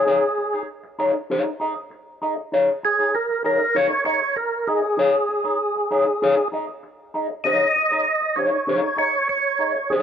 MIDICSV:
0, 0, Header, 1, 4, 480
1, 0, Start_track
1, 0, Tempo, 614754
1, 48, Time_signature, 4, 2, 24, 8
1, 7828, End_track
2, 0, Start_track
2, 0, Title_t, "Tonewheel organ"
2, 0, Program_c, 0, 16
2, 0, Note_on_c, 0, 68, 92
2, 491, Note_off_c, 0, 68, 0
2, 2223, Note_on_c, 0, 68, 91
2, 2457, Note_on_c, 0, 70, 96
2, 2465, Note_off_c, 0, 68, 0
2, 2678, Note_off_c, 0, 70, 0
2, 2701, Note_on_c, 0, 70, 91
2, 2937, Note_on_c, 0, 73, 115
2, 2944, Note_off_c, 0, 70, 0
2, 3156, Note_off_c, 0, 73, 0
2, 3166, Note_on_c, 0, 73, 102
2, 3407, Note_on_c, 0, 70, 89
2, 3417, Note_off_c, 0, 73, 0
2, 3650, Note_on_c, 0, 68, 100
2, 3657, Note_off_c, 0, 70, 0
2, 5060, Note_off_c, 0, 68, 0
2, 5809, Note_on_c, 0, 75, 127
2, 6526, Note_on_c, 0, 73, 103
2, 6552, Note_off_c, 0, 75, 0
2, 7006, Note_off_c, 0, 73, 0
2, 7015, Note_on_c, 0, 73, 113
2, 7247, Note_off_c, 0, 73, 0
2, 7256, Note_on_c, 0, 73, 95
2, 7729, Note_on_c, 0, 68, 96
2, 7747, Note_off_c, 0, 73, 0
2, 7828, Note_off_c, 0, 68, 0
2, 7828, End_track
3, 0, Start_track
3, 0, Title_t, "Clean electric guitar"
3, 0, Program_c, 1, 27
3, 51, Note_on_c, 1, 63, 81
3, 55, Note_on_c, 1, 68, 86
3, 57, Note_on_c, 1, 73, 91
3, 174, Note_off_c, 1, 63, 0
3, 176, Note_off_c, 1, 68, 0
3, 177, Note_off_c, 1, 73, 0
3, 414, Note_on_c, 1, 73, 67
3, 420, Note_on_c, 1, 68, 68
3, 422, Note_on_c, 1, 63, 53
3, 509, Note_off_c, 1, 73, 0
3, 512, Note_off_c, 1, 68, 0
3, 513, Note_off_c, 1, 63, 0
3, 769, Note_on_c, 1, 63, 89
3, 776, Note_on_c, 1, 68, 91
3, 778, Note_on_c, 1, 73, 100
3, 878, Note_off_c, 1, 73, 0
3, 885, Note_off_c, 1, 68, 0
3, 894, Note_off_c, 1, 63, 0
3, 1015, Note_on_c, 1, 63, 86
3, 1020, Note_on_c, 1, 68, 91
3, 1024, Note_on_c, 1, 73, 94
3, 1118, Note_off_c, 1, 73, 0
3, 1126, Note_off_c, 1, 68, 0
3, 1168, Note_off_c, 1, 63, 0
3, 1247, Note_on_c, 1, 63, 66
3, 1254, Note_on_c, 1, 68, 72
3, 1259, Note_on_c, 1, 75, 67
3, 1346, Note_off_c, 1, 63, 0
3, 1350, Note_off_c, 1, 68, 0
3, 1352, Note_off_c, 1, 75, 0
3, 1730, Note_on_c, 1, 63, 69
3, 1735, Note_on_c, 1, 68, 65
3, 1740, Note_on_c, 1, 75, 63
3, 1828, Note_off_c, 1, 63, 0
3, 1831, Note_off_c, 1, 68, 0
3, 1833, Note_off_c, 1, 75, 0
3, 1969, Note_on_c, 1, 63, 76
3, 1979, Note_on_c, 1, 68, 90
3, 1980, Note_on_c, 1, 73, 102
3, 2095, Note_off_c, 1, 63, 0
3, 2100, Note_off_c, 1, 68, 0
3, 2101, Note_off_c, 1, 73, 0
3, 2333, Note_on_c, 1, 73, 62
3, 2335, Note_on_c, 1, 68, 66
3, 2340, Note_on_c, 1, 63, 52
3, 2430, Note_off_c, 1, 73, 0
3, 2431, Note_off_c, 1, 68, 0
3, 2433, Note_off_c, 1, 63, 0
3, 2689, Note_on_c, 1, 63, 78
3, 2690, Note_on_c, 1, 68, 90
3, 2698, Note_on_c, 1, 73, 81
3, 2803, Note_off_c, 1, 73, 0
3, 2809, Note_off_c, 1, 68, 0
3, 2815, Note_off_c, 1, 63, 0
3, 2926, Note_on_c, 1, 63, 87
3, 2935, Note_on_c, 1, 68, 90
3, 2937, Note_on_c, 1, 73, 93
3, 3033, Note_off_c, 1, 73, 0
3, 3038, Note_off_c, 1, 68, 0
3, 3054, Note_off_c, 1, 63, 0
3, 3160, Note_on_c, 1, 63, 63
3, 3167, Note_on_c, 1, 68, 64
3, 3171, Note_on_c, 1, 75, 84
3, 3264, Note_off_c, 1, 63, 0
3, 3267, Note_off_c, 1, 68, 0
3, 3270, Note_off_c, 1, 75, 0
3, 3649, Note_on_c, 1, 63, 65
3, 3653, Note_on_c, 1, 68, 61
3, 3658, Note_on_c, 1, 75, 60
3, 3748, Note_off_c, 1, 63, 0
3, 3751, Note_off_c, 1, 68, 0
3, 3753, Note_off_c, 1, 75, 0
3, 3881, Note_on_c, 1, 63, 90
3, 3889, Note_on_c, 1, 68, 97
3, 3896, Note_on_c, 1, 73, 96
3, 4012, Note_off_c, 1, 63, 0
3, 4016, Note_off_c, 1, 68, 0
3, 4019, Note_off_c, 1, 73, 0
3, 4246, Note_on_c, 1, 73, 71
3, 4250, Note_on_c, 1, 68, 65
3, 4253, Note_on_c, 1, 63, 58
3, 4347, Note_off_c, 1, 73, 0
3, 4349, Note_off_c, 1, 68, 0
3, 4351, Note_off_c, 1, 63, 0
3, 4612, Note_on_c, 1, 63, 69
3, 4616, Note_on_c, 1, 68, 88
3, 4621, Note_on_c, 1, 73, 92
3, 4728, Note_off_c, 1, 73, 0
3, 4733, Note_off_c, 1, 68, 0
3, 4737, Note_off_c, 1, 63, 0
3, 4856, Note_on_c, 1, 63, 86
3, 4860, Note_on_c, 1, 68, 100
3, 4866, Note_on_c, 1, 73, 103
3, 4969, Note_off_c, 1, 73, 0
3, 4976, Note_off_c, 1, 68, 0
3, 4979, Note_off_c, 1, 63, 0
3, 5090, Note_on_c, 1, 63, 62
3, 5098, Note_on_c, 1, 68, 73
3, 5102, Note_on_c, 1, 75, 76
3, 5189, Note_off_c, 1, 63, 0
3, 5193, Note_off_c, 1, 68, 0
3, 5195, Note_off_c, 1, 75, 0
3, 5575, Note_on_c, 1, 63, 61
3, 5580, Note_on_c, 1, 68, 62
3, 5585, Note_on_c, 1, 75, 57
3, 5672, Note_off_c, 1, 63, 0
3, 5674, Note_off_c, 1, 68, 0
3, 5676, Note_off_c, 1, 75, 0
3, 5817, Note_on_c, 1, 63, 85
3, 5817, Note_on_c, 1, 68, 91
3, 5824, Note_on_c, 1, 73, 97
3, 5970, Note_off_c, 1, 63, 0
3, 5970, Note_off_c, 1, 68, 0
3, 5974, Note_off_c, 1, 73, 0
3, 6173, Note_on_c, 1, 73, 78
3, 6179, Note_on_c, 1, 68, 64
3, 6184, Note_on_c, 1, 63, 61
3, 6270, Note_off_c, 1, 73, 0
3, 6273, Note_off_c, 1, 68, 0
3, 6276, Note_off_c, 1, 63, 0
3, 6532, Note_on_c, 1, 63, 76
3, 6540, Note_on_c, 1, 68, 84
3, 6546, Note_on_c, 1, 73, 93
3, 6644, Note_off_c, 1, 73, 0
3, 6650, Note_off_c, 1, 68, 0
3, 6687, Note_off_c, 1, 63, 0
3, 6770, Note_on_c, 1, 63, 88
3, 6777, Note_on_c, 1, 68, 96
3, 6783, Note_on_c, 1, 73, 88
3, 6881, Note_off_c, 1, 73, 0
3, 6889, Note_off_c, 1, 68, 0
3, 6926, Note_off_c, 1, 63, 0
3, 6999, Note_on_c, 1, 63, 57
3, 7006, Note_on_c, 1, 68, 63
3, 7010, Note_on_c, 1, 75, 79
3, 7103, Note_off_c, 1, 63, 0
3, 7106, Note_off_c, 1, 68, 0
3, 7108, Note_off_c, 1, 75, 0
3, 7487, Note_on_c, 1, 63, 53
3, 7494, Note_on_c, 1, 68, 59
3, 7497, Note_on_c, 1, 75, 67
3, 7586, Note_off_c, 1, 63, 0
3, 7590, Note_off_c, 1, 68, 0
3, 7592, Note_off_c, 1, 75, 0
3, 7739, Note_on_c, 1, 63, 76
3, 7744, Note_on_c, 1, 68, 83
3, 7749, Note_on_c, 1, 73, 104
3, 7828, Note_off_c, 1, 63, 0
3, 7828, Note_off_c, 1, 68, 0
3, 7828, Note_off_c, 1, 73, 0
3, 7828, End_track
4, 0, Start_track
4, 0, Title_t, "Muted clean electric guitar strokes"
4, 298, Note_on_c, 9, 29, 37
4, 376, Note_off_c, 9, 29, 0
4, 652, Note_on_c, 9, 29, 55
4, 730, Note_off_c, 9, 29, 0
4, 888, Note_on_c, 9, 29, 46
4, 966, Note_off_c, 9, 29, 0
4, 1127, Note_on_c, 9, 29, 54
4, 1205, Note_off_c, 9, 29, 0
4, 1371, Note_on_c, 9, 29, 41
4, 1449, Note_off_c, 9, 29, 0
4, 1486, Note_on_c, 9, 29, 37
4, 1564, Note_off_c, 9, 29, 0
4, 1850, Note_on_c, 9, 29, 45
4, 1929, Note_off_c, 9, 29, 0
4, 2212, Note_on_c, 9, 29, 49
4, 2290, Note_off_c, 9, 29, 0
4, 2573, Note_on_c, 9, 29, 46
4, 2651, Note_off_c, 9, 29, 0
4, 2812, Note_on_c, 9, 29, 42
4, 2890, Note_off_c, 9, 29, 0
4, 3043, Note_on_c, 9, 29, 53
4, 3121, Note_off_c, 9, 29, 0
4, 3281, Note_on_c, 9, 29, 52
4, 3359, Note_off_c, 9, 29, 0
4, 3403, Note_on_c, 9, 29, 48
4, 3481, Note_off_c, 9, 29, 0
4, 3765, Note_on_c, 9, 29, 46
4, 3843, Note_off_c, 9, 29, 0
4, 4129, Note_on_c, 9, 29, 33
4, 4208, Note_off_c, 9, 29, 0
4, 4494, Note_on_c, 9, 29, 51
4, 4573, Note_off_c, 9, 29, 0
4, 4738, Note_on_c, 9, 29, 44
4, 4816, Note_off_c, 9, 29, 0
4, 4979, Note_on_c, 9, 29, 47
4, 5057, Note_off_c, 9, 29, 0
4, 5216, Note_on_c, 9, 29, 45
4, 5295, Note_off_c, 9, 29, 0
4, 5333, Note_on_c, 9, 29, 43
4, 5411, Note_off_c, 9, 29, 0
4, 5698, Note_on_c, 9, 29, 46
4, 5776, Note_off_c, 9, 29, 0
4, 6059, Note_on_c, 9, 29, 37
4, 6137, Note_off_c, 9, 29, 0
4, 6412, Note_on_c, 9, 29, 57
4, 6490, Note_off_c, 9, 29, 0
4, 6653, Note_on_c, 9, 29, 51
4, 6731, Note_off_c, 9, 29, 0
4, 6890, Note_on_c, 9, 29, 48
4, 6969, Note_off_c, 9, 29, 0
4, 7132, Note_on_c, 9, 29, 43
4, 7210, Note_off_c, 9, 29, 0
4, 7251, Note_on_c, 9, 29, 38
4, 7329, Note_off_c, 9, 29, 0
4, 7614, Note_on_c, 9, 29, 51
4, 7692, Note_off_c, 9, 29, 0
4, 7828, End_track
0, 0, End_of_file